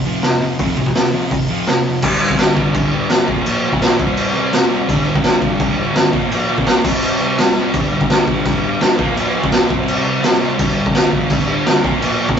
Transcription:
0.05 distorted electric guitar F2 C3 F3
0.23 distorted electric guitar F2 C3, snare, open hi-hat
0.42 distorted electric guitar F2 C3
0.59 distorted electric guitar F2 C3 F3, kick, open hi-hat
0.77 distorted electric guitar F2 C3, kick
0.86 kick
0.95 distorted electric guitar F2 C3, snare, open hi-hat
1.13 distorted electric guitar F2 C3 F3
1.31 distorted electric guitar F2 C3, kick, open hi-hat
1.50 distorted electric guitar F2 C3 F3
1.67 distorted electric guitar F2 C3, snare, open hi-hat
1.87 distorted electric guitar F2 C3
2.02 distorted electric guitar G2 D3, kick, crash
2.07 distorted electric guitar G3
2.21 distorted electric guitar G3
2.25 distorted electric guitar D3
2.30 kick
2.39 distorted electric guitar G2 D3, snare, crash
2.44 distorted electric guitar G3
2.57 kick
2.75 kick, crash
2.92 distorted electric guitar D3 G3
3.09 distorted electric guitar G2 D3, snare, crash
3.14 distorted electric guitar G3
3.28 distorted electric guitar F3 A#3, kick
3.32 distorted electric guitar A#2
3.45 distorted electric guitar A#2 F3, crash
3.49 distorted electric guitar A#3
3.63 distorted electric guitar A#3
3.69 distorted electric guitar F3
3.73 kick
3.81 distorted electric guitar A#2 F3, snare, crash
3.86 distorted electric guitar A#3
3.98 distorted electric guitar G3 C4, kick
4.02 distorted electric guitar C3
4.17 crash
4.33 distorted electric guitar C4
4.38 distorted electric guitar G3
4.53 distorted electric guitar C3 G3 C4, snare, crash
4.70 distorted electric guitar C4
4.74 distorted electric guitar G3
4.87 distorted electric guitar G2 D3, kick, crash
4.92 distorted electric guitar G3
5.05 distorted electric guitar G3
5.10 distorted electric guitar D3
5.16 kick
5.23 distorted electric guitar G2 D3, snare, crash
5.28 distorted electric guitar G3
5.42 kick
5.60 kick, crash
5.77 distorted electric guitar G3
5.82 distorted electric guitar D3
5.94 distorted electric guitar G2 D3, snare, crash
5.99 distorted electric guitar G3
6.13 distorted electric guitar A#2 F3 A#3, kick
6.31 distorted electric guitar A#2 F3, crash
6.35 distorted electric guitar A#3
6.48 distorted electric guitar A#3
6.52 distorted electric guitar F3
6.58 kick
6.65 distorted electric guitar A#2 F3, snare, crash
6.70 distorted electric guitar A#3
6.84 distorted electric guitar C3 G3 C4, kick, crash
7.03 crash
7.21 distorted electric guitar C4
7.25 distorted electric guitar G3
7.38 distorted electric guitar C3 G3, snare, crash
7.43 distorted electric guitar C4
7.56 distorted electric guitar C4
7.60 distorted electric guitar G3
7.74 distorted electric guitar G2 D3, kick, crash
7.79 distorted electric guitar G3
7.92 distorted electric guitar G3
7.96 distorted electric guitar D3
8.01 kick
8.10 distorted electric guitar G2 D3 G3, snare, crash
8.28 kick
8.46 kick, crash
8.63 distorted electric guitar G3
8.68 distorted electric guitar D3
8.81 distorted electric guitar G2 D3 G3, snare, crash
8.98 distorted electric guitar F3 A#3, kick
9.02 distorted electric guitar A#2
9.17 distorted electric guitar A#2 F3, crash
9.21 distorted electric guitar A#3
9.35 distorted electric guitar A#3
9.39 distorted electric guitar F3
9.44 kick
9.52 distorted electric guitar A#2 F3, snare, crash
9.57 distorted electric guitar A#3
9.70 distorted electric guitar G3 C4, kick
9.75 distorted electric guitar C3
9.88 crash
10.05 distorted electric guitar G3 C4
10.21 distorted electric guitar C3 G3, snare, crash
10.26 distorted electric guitar C4
10.41 distorted electric guitar C4
10.46 distorted electric guitar G3
10.57 distorted electric guitar G2 D3, kick, crash
10.63 distorted electric guitar G3
10.76 distorted electric guitar G3
10.81 distorted electric guitar D3
10.86 kick
10.94 distorted electric guitar G2 D3, snare, crash
10.98 distorted electric guitar G3
11.13 kick
11.30 kick, crash
11.48 distorted electric guitar G3
11.52 distorted electric guitar D3
11.65 distorted electric guitar G2 D3 G3, snare, crash
11.83 distorted electric guitar F3 A#3, kick
11.88 distorted electric guitar A#2
12.01 distorted electric guitar A#2 F3, crash
12.06 distorted electric guitar A#3
12.19 distorted electric guitar A#3
12.24 distorted electric guitar F3
12.29 kick

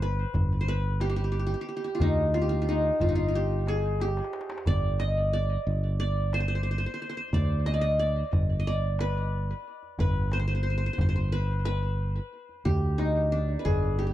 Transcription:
Already playing: fretless electric bass G1
0.02 qanun B4
0.34 fretless electric bass G1, darbuka dum
0.61 qanun C5
0.68 qanun B4, darbuka ka
0.84 darbuka ka
1.00 qanun G4, darbuka tek
1.09 qanun G4
1.16 qanun G4
1.24 qanun G4
1.32 qanun G4, darbuka ka
1.39 qanun G4
1.47 qanun G4
1.54 qanun G4
1.61 qanun G4
1.69 qanun G4
1.77 qanun G4
1.84 qanun G4, darbuka ka
1.95 qanun F4
2.00 fretless electric bass D2, qanun D#4, darbuka dum
2.34 qanun F4, darbuka tek
2.42 qanun G4
2.49 qanun F4, darbuka ka
2.62 qanun F4
2.69 qanun D#4
3.00 fretless electric bass G1, qanun F4, darbuka dum
3.09 qanun D#4
3.15 qanun F4, darbuka ka
3.28 qanun F4
3.33 qanun G4, darbuka ka
3.67 qanun G#4, darbuka tek
3.84 darbuka ka
4.00 qanun G4, darbuka tek
4.08 darbuka ka
4.17 darbuka tek
4.24 darbuka ka
4.33 darbuka tek
4.41 darbuka ka
4.50 darbuka tek
4.58 darbuka ka
4.66 fretless electric bass G1, qanun D5, darbuka dum
4.99 qanun D#5, darbuka tek
5.17 darbuka ka
5.33 qanun D5
5.67 fretless electric bass G1
5.99 qanun D5, darbuka ka
6.17 darbuka ka
6.33 qanun C5, darbuka tek
6.40 qanun C5
6.48 qanun C5
6.55 qanun C5
6.63 qanun C5, darbuka ka
6.71 qanun C5
6.78 qanun C5
6.86 qanun C5
6.94 qanun C5
7.02 qanun C5
7.09 qanun C5
7.16 qanun C5, darbuka ka
7.33 fretless electric bass D2, qanun D5, darbuka dum
7.66 qanun D#5, darbuka tek
7.74 qanun D5
7.81 qanun D#5, darbuka ka
7.99 qanun D5
8.33 fretless electric bass G1, darbuka dum
8.60 qanun D#5
8.67 qanun D5
8.83 darbuka ka
8.99 qanun B4, darbuka tek
9.33 darbuka ka
9.83 darbuka ka
9.99 fretless electric bass G1, qanun B4, darbuka dum
10.32 qanun C5, darbuka tek
10.39 qanun C5
10.48 qanun C5, darbuka ka
10.55 qanun C5
10.63 qanun C5
10.70 qanun C5
10.78 qanun C5
10.86 qanun C5
10.93 qanun C5
10.98 fretless electric bass G1, qanun C5, darbuka dum
11.09 qanun C5
11.16 qanun C5
11.32 qanun B4, darbuka ka
11.49 darbuka ka
11.65 qanun B4, darbuka tek
11.99 darbuka ka
12.49 darbuka ka
12.65 fretless electric bass D2, qanun G4, darbuka dum
12.98 qanun D#4, darbuka tek
13.32 qanun D4
13.59 qanun B4
13.65 fretless electric bass G1, qanun G#4, darbuka dum
13.83 darbuka ka
13.99 qanun G4
14.07 qanun G4

